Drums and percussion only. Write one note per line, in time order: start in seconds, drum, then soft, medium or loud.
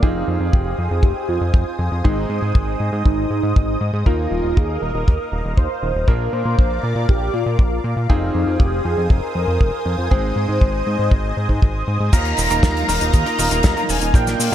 0.03 kick loud
0.53 kick loud
1.03 kick loud
1.54 kick loud
2.05 kick loud
2.55 kick loud
3.06 kick loud
3.56 kick loud
4.06 kick medium
4.57 kick loud
5.08 kick loud
5.57 kick loud
6.08 kick medium
6.59 kick loud
7.09 kick loud
7.59 kick loud
8.10 kick loud
8.60 kick loud
9.10 kick loud
9.61 kick loud
10.11 kick loud
10.61 kick loud
11.11 kick loud
11.49 kick medium
11.62 kick loud
12.13 kick loud
12.13 closed hi-hat loud
12.13 crash loud
12.13 cabasa medium
12.25 closed hi-hat medium
12.37 open hi-hat loud
12.37 cabasa medium
12.50 closed hi-hat medium
12.50 cabasa soft
12.63 kick loud
12.63 snare loud
12.63 closed hi-hat medium
12.63 cabasa medium
12.77 closed hi-hat medium
12.89 open hi-hat loud
12.89 cabasa medium
13.01 closed hi-hat medium
13.01 cabasa soft
13.13 kick loud
13.13 closed hi-hat medium
13.13 cabasa medium
13.26 closed hi-hat medium
13.38 open hi-hat loud
13.38 cabasa medium
13.51 closed hi-hat medium
13.51 cabasa medium
13.63 kick loud
13.63 snare loud
13.63 closed hi-hat loud
13.63 cabasa medium
13.77 closed hi-hat medium
13.89 open hi-hat loud
13.89 cabasa medium
14.01 closed hi-hat medium
14.01 cabasa soft
14.14 kick loud
14.14 closed hi-hat medium
14.14 cabasa medium
14.27 snare soft
14.27 closed hi-hat medium
14.27 cabasa medium
14.40 open hi-hat loud
14.40 cabasa medium